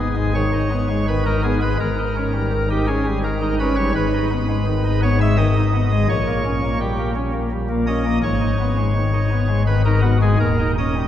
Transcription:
Already playing: G#1 G#2 B3 G#4
0.16 G#3
0.34 D#3 C#5
0.53 D#4
0.71 B3
0.90 G#3
1.08 D#3 B4
1.26 D#4 A#4
1.43 B3 G#4
1.61 G#3 B4
1.80 G#1 G#2 A#4
1.99 D#4
2.16 C#4
2.34 G3
2.52 D#3
2.70 D#4 G4
2.87 C#4 G#4
3.06 G3
3.23 D#3 A#4
3.42 D#4
3.60 C#4 B4
3.76 G3 C#5
3.95 G#1 G#2 B4
4.14 D#4
4.31 B3
4.48 G#3
4.67 D#3
4.85 D#4
5.03 B3 C#5
5.21 G#3 E5
5.38 D#3 D#5
5.57 D#4
5.74 B3
5.92 G#3
6.09 A#1 A#2 C#5
6.27 A#3
6.45 C#4
6.63 A#3
6.80 G3 G4
6.99 A#3
7.15 C#4
7.33 A#3
7.51 G3
7.69 A#3
7.87 C#4 D#5
8.06 A#3
8.23 G#1 G#2 C#5
8.41 D#4
8.60 B3
8.77 G#3
8.97 D#3
9.14 D#4
9.32 B3
9.48 G#3
9.67 D#3 B4
9.85 D#4 A#4
10.02 B3 F#4
10.22 G#3 G#4
10.40 D#1 D#2 A#4
10.59 D#4
10.78 C#4 D#5
10.96 G3

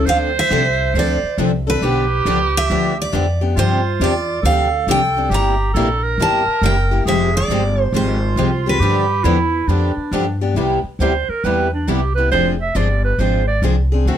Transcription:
0.06 D2 D3 F3 C4 D4 A4 C5 F5
0.39 E5
0.51 C2 D3 F3 C4 D4 A4
0.94 D2 D3 F3 C4 D4 A4
0.99 D5
1.23 muted upright bass stroke
1.38 C2 D3 F3 C4 D4 A4
1.67 C4 D4 A4 B4
1.81 B1 D3 F3 B3 D4 G4
2.25 C#2 D3 F3 B3 D4 G4
2.57 E5
2.70 D2 D3 F3 B3 D4 G4
3.02 D5
3.12 F2 D3 F3 B3 D4 G4
3.41 B3 D4 G4
3.55 G2 C3 F3 C4 D4 F4 G4 C5
4.00 E2 C3 F3 C4 D4 G4 D5
4.42 D2 C3 F3 C4 D4 G4 A4 F5
4.87 C2 C3 F3 C4 D4 G4
4.91 G5
5.17 C4 D4 G4
5.30 G1 C3 G3 A#3 E4 G4
5.34 A#5
5.74 A#1 C3 G3 A#3 E4 G4 A4
6.03 A#4
6.18 G1 C3 G3 A#3 E4 G4
6.22 A5
6.46 muted upright bass stroke
6.62 F#1 C3 G3 A#3 E4 G4
6.66 G5
6.91 A#3 E4 G4
7.05 F1 F3 G#3 C4 G4 G#4 E5
7.37 D5
7.48 G1 F3 G#3 C4 G4
7.82 C5
7.93 G#1 F3 G#3 C4 F4 G4 C5
8.36 C2 F3 G#3 C4 G4
8.66 G#3 C4 G4 B4
8.79 G2 D3 F3 B3 D4 G4
9.24 E2 D3 F3 B3 D4 E4 G4
9.67 F2 D3 F3 B3 D4 G4
9.97 muted upright bass stroke
10.11 G2 D3 F3 B3 D4 G4
10.41 B3 D4 G4
10.55 C2 C3 G3 B3 E4 G4
10.83 muted upright bass stroke
10.99 D2 C3 G3 B3 E4 G4 C5
11.29 A#4, muted upright bass stroke
11.44 E2 C3 G3 B3 E4 G4 B4
11.73 D4
11.88 C2 C3 G3 B3 E4 G4
12.15 B3 E4 G4 B4
12.31 F1 F3 G#3 C4 D4 F4 G#4 C5
12.61 E5
12.75 G1 F3 G#3 C4 D4 F4 G#4 C5 D5
13.04 B4
13.18 G#1 F3 G#3 C4 D4 F4 G#4 C5
13.47 D5
13.62 C2 F3 G#3 C4 D4 F4 G#4 C5
13.92 C4 D4 G#4
14.05 D2 D3 A3 C4 F#4 A4

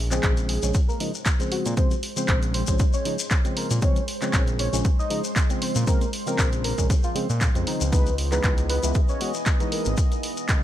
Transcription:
Already playing: A#1 G#3 C5
0.11 C#3 F3 G#3 C4 G#4, clap, closed hi-hat, shekere
0.23 A#1, kick, clap, closed hi-hat, shekere
0.37 closed hi-hat, shekere
0.49 G#4, open hi-hat
0.62 A#1 C#3 F3 G#3 C#4, closed hi-hat, shekere
0.74 kick, closed hi-hat, shekere
0.88 A#4, shekere
1.00 C#3 F3 G#3 D#4, open hi-hat
1.14 shekere
1.26 kick, clap, closed hi-hat, shekere
1.39 C#3 F3 G#3 C4, closed hi-hat, shekere
1.52 F#4, open hi-hat
1.66 A#2, closed hi-hat, shekere
1.77 C#3 F3 G#3 C4 C5, kick, closed hi-hat, shekere
1.91 closed hi-hat, shekere
2.03 open hi-hat
2.16 C#3 F3 G#3 C4 C5, closed hi-hat, shekere
2.28 A#1, kick, clap, closed hi-hat, shekere
2.42 closed hi-hat, shekere
2.54 C5, open hi-hat
2.67 A#1 C#3 F3 G#3 C#4, kick, closed hi-hat, shekere
2.79 kick, closed hi-hat, shekere
2.93 C#5, shekere
3.05 C#3 F3 G#3 D#4, open hi-hat
3.19 shekere
3.31 kick, clap, closed hi-hat, shekere
3.44 C#3 F3 G#3 C4, closed hi-hat, shekere
3.57 A#4, open hi-hat
3.71 A#2, closed hi-hat, shekere
3.82 C#3 F3 G#3 C4 C#5, kick, closed hi-hat, shekere
3.96 closed hi-hat, shekere
4.08 open hi-hat
4.21 C#3 F3 G#3 C4 C#5, clap, closed hi-hat, shekere
4.33 A#1, kick, clap, closed hi-hat, shekere
4.47 closed hi-hat, shekere
4.59 C#5, open hi-hat
4.72 A#1 C#3 F3 G#3 C#4, closed hi-hat, shekere
4.85 kick, closed hi-hat, shekere
4.99 D#5, shekere
5.10 C#3 F3 G#3 D#4, open hi-hat
5.24 shekere
5.36 kick, clap, closed hi-hat, shekere
5.49 C#3 F3 G#3 C4, closed hi-hat, shekere
5.62 C5, open hi-hat
5.75 A#2, closed hi-hat, shekere
5.87 C#3 F3 G#3 C4 A#4, kick, closed hi-hat, shekere
6.01 closed hi-hat, shekere
6.13 open hi-hat
6.26 C#3 F3 G#3 C4 A#4, closed hi-hat, shekere
6.39 A#1, kick, clap, closed hi-hat, shekere
6.52 closed hi-hat, shekere
6.64 A#4, open hi-hat
6.78 A#1 C#3 F3 G#3 C#4, kick, closed hi-hat, shekere
6.90 kick, closed hi-hat, shekere
7.03 F4, shekere
7.15 C#3 F3 G#3 C4, open hi-hat
7.30 A#2, shekere
7.41 kick, clap, closed hi-hat, shekere
7.55 F2 C#3 F3 G#3 C4, closed hi-hat, shekere
7.67 D#4, open hi-hat
7.81 C#2, closed hi-hat, shekere
7.92 E3 G#3 B3 D#4 B4 D#5, kick, closed hi-hat, shekere
8.07 closed hi-hat, shekere
8.18 open hi-hat
8.31 E3 G#3 B3 D#4 B4, clap, closed hi-hat, shekere
8.44 C#2, kick, clap, closed hi-hat, shekere
8.58 closed hi-hat, shekere
8.70 B4, open hi-hat
8.83 C#2 E3 G#3 B3 E4, closed hi-hat, shekere
8.94 kick, closed hi-hat, shekere
9.09 C#5, shekere
9.20 E3 G#3 B3 F#4, open hi-hat
9.34 shekere
9.46 kick, clap, closed hi-hat, shekere
9.60 E3 G#3 B3 D#4, closed hi-hat, shekere
9.72 A#4, open hi-hat
9.85 G#1, closed hi-hat, shekere
9.97 kick, closed hi-hat, shekere
10.12 closed hi-hat, shekere
10.23 open hi-hat
10.37 closed hi-hat, shekere
10.49 C#2, kick, clap, closed hi-hat, shekere

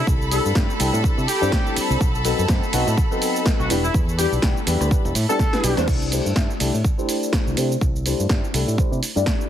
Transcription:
Already playing: A4 B5
0.07 C2, kick, shaker
0.22 shaker
0.31 G3 C4 D4 E4 A4, open hi-hat, shaker
0.45 G2, shaker
0.55 G2 G3 C4 D4 E4 A4, kick, snare, shaker
0.70 shaker
0.79 C2 G3 C4 D4 E4 G4, open hi-hat, shaker
0.93 A2, shaker
1.04 G3 C4 D4 E4 A4, kick, shaker
1.18 C3, shaker
1.28 G4, open hi-hat, shaker
1.41 G2 G3 C4 D4 E4 C5, shaker
1.52 kick, snare, shaker
1.67 shaker
1.77 muted fingered electric bass stroke, open hi-hat, shaker
1.90 C2, shaker
2.01 B1, kick, shaker
2.15 shaker
2.24 F#3 B3 C4 D#4 A4, open hi-hat, shaker
2.39 F#2, shaker
2.48 F#2 F#3 B3 C4 D#4 C5, kick, snare, shaker
2.63 shaker
2.73 B1 F#3 B3 C4 D#4 F#4, open hi-hat, shaker
2.87 A2, shaker
2.98 kick, shaker
3.11 F#3 B3 C4 D#4 A4, shaker
3.22 open hi-hat, shaker
3.36 shaker
3.45 F#3 B3 C4 D#4 A4, kick, snare, shaker
3.60 B1 F#4, shaker
3.70 E1 G3 B3 D4 E4 G4, open hi-hat, shaker
3.84 E4, shaker
3.94 E2, kick, shaker
4.09 shaker
4.18 G3 B3 D4 E4 G4, open hi-hat, shaker
4.32 B1, shaker
4.42 B1 G3 B3 D4 E4 G4, kick, snare, shaker
4.57 shaker
4.66 E2 G3 B3 D4 E4 G4, open hi-hat, shaker
4.81 D2, shaker
4.91 G3 B3 D4 E4 G4, kick, shaker
5.05 E1, shaker
5.15 A2, open hi-hat, shaker
5.29 G3 B3 D4 E4 G4 A4, shaker
5.39 kick, snare, shaker
5.53 G3 B3 D4 E4 B4, snare, shaker
5.63 B1 G3 B3 D4 E4 G4, open hi-hat, shaker
5.77 E2 G3 C4 D4 E4 C5, snare, shaker
5.88 C2, kick, crash, shaker
6.02 shaker
6.11 A3 D4 E4 G4 C5, open hi-hat, shaker
6.26 G2, shaker
6.36 G2 A3 E4 G4 E5, kick, snare, shaker
6.51 shaker
6.60 C2 A3 D4 E4 G4 A4, open hi-hat, shaker
6.74 A2, shaker
6.84 kick, shaker
6.98 A3 D4 E4 G4 C5, shaker
7.09 open hi-hat, shaker
7.23 shaker
7.33 kick, snare, shaker
7.47 C2, shaker
7.57 C3 A3 D4 E4 G4 C5, open hi-hat, shaker
7.72 shaker
7.81 C2, kick, shaker
7.96 shaker
8.05 A3 D4 E4 G4 C5, open hi-hat, shaker
8.19 G2, shaker
8.29 G2 G4, kick, snare, shaker
8.44 shaker
8.54 C2 A3 D4 E4 G4 A4, open hi-hat, shaker
8.67 A2, shaker
8.78 E4 C5, kick, shaker
8.92 C3, shaker
9.03 open hi-hat, shaker
9.15 G2 A3 D4 E4 G4 D5, shaker
9.26 kick, snare, shaker
9.41 shaker

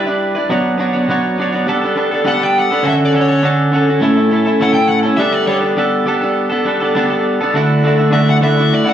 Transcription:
Already playing: G3
0.06 D4 E4 B4
0.35 D4 E4 B4
0.49 B2 F#3 B3 D4 F#4 C#5
0.78 B3 D4 F#4 C#5
0.93 B3 D4 F#4 C#5
1.08 B2 F#3 B3 D4 F#4 C#5
1.38 B3 D4 F#4 C#5
1.52 B3 D4 F#4 C#5
1.67 G3 B3 D4 A4
1.81 B3 D4 A4
1.96 G3 B3 D4 A4
2.11 B3 D4 A4
2.24 G3 B3 D4 A4 F#5
2.39 B3 D4 A4
2.44 G5
2.59 F#5
2.70 B3 D4 A4
2.83 D3 C#4 F#4 A4
2.88 E5
3.05 D5
3.13 D3 C#4 F#4 A4
3.21 C#5
3.29 C#4 F#4 A4
3.43 D3 C#4 F#4 A4
3.72 D3 C#4 F#4 A4
3.87 C#4 F#4 A4
4.01 A2 A3 C#4 E4 A4
4.16 C#4 E4 A4
4.31 A3 C#4 E4 A4
4.45 C#4 E4 A4
4.60 A2 A3 C#4 E4 A4 F#5
4.74 E4 A4 G5
4.78 C#4
4.89 F#5
5.03 C#4 E4 A4
5.17 G3 B3 D4 A4 E5
5.32 D5
5.47 G3 B3 D4 A4 C#5
5.61 B3 D4 A4
5.77 G3 B3 D4 A4
6.06 G3 B3 D4 A4
6.21 B3 D4 A4
6.50 B3 D4 A4
6.65 G3 B3 D4 A4
6.80 B3 D4 A4
6.95 G3 B3 D4 A4
7.10 B3 D4 A4
7.41 B3 D4 A4
7.54 D3 A3 D4 E4 F#4
7.84 A3 D4 E4 F#4
7.98 D4 E4 F#4
8.11 D3 A3 D4 E4 F#4 E5
8.30 F#5
8.41 A3 D4 E4 F#4 E5
8.57 D4 E4 F#4
8.74 D5
8.85 D4 E4 F#4
8.89 F#5

